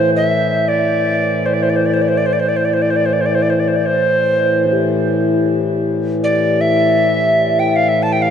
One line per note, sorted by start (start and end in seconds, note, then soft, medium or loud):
0.00 8.30 A2 medium
0.00 8.30 E3 medium
0.00 0.11 C5 medium
0.16 0.70 E5 medium
0.68 1.47 D5 medium
1.46 1.55 C5 medium
1.54 1.64 D5 medium
1.63 1.71 C5 medium
1.70 1.78 D5 medium
1.76 1.87 C5 medium
1.86 1.95 D5 medium
1.94 2.03 C5 soft
2.02 2.10 D5 soft
2.08 2.19 C5 soft
2.17 2.28 D5 medium
2.26 2.34 C5 medium
2.33 2.41 D5 medium
2.40 2.50 C5 medium
2.49 2.58 D5 medium
2.57 2.66 C5 medium
2.65 2.75 D5 medium
2.74 2.83 C5 medium
2.82 2.92 D5 medium
2.90 2.98 C5 medium
2.96 3.07 D5 medium
3.06 3.15 C5 medium
3.13 3.22 D5 medium
3.21 3.27 C5 medium
3.26 3.36 D5 medium
3.35 3.44 C5 medium
3.42 3.52 D5 medium
3.50 3.61 C5 medium
3.60 3.69 D5 soft
3.68 3.78 C5 soft
3.76 3.87 D5 soft
3.86 4.73 C5 medium
4.66 8.30 E4 medium
4.72 8.30 G4 soft
6.24 6.62 D5 medium
6.61 7.61 E5 medium
7.59 7.77 G5 medium
7.76 7.90 F5 medium
7.89 8.04 E5 medium
8.03 8.14 A5 medium
8.13 8.24 G5 medium
8.22 8.30 F5 medium